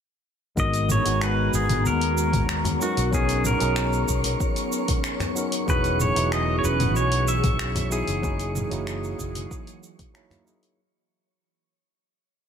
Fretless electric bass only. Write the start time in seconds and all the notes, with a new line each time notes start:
0.57 G#1
1.06 G#1
1.53 G#1
1.85 D#2
2.97 B1
3.61 B1
4.08 B1
5.68 E1
6.16 E1
6.64 E1
6.96 B1
8.08 F#1
8.71 F#1
9.19 F#1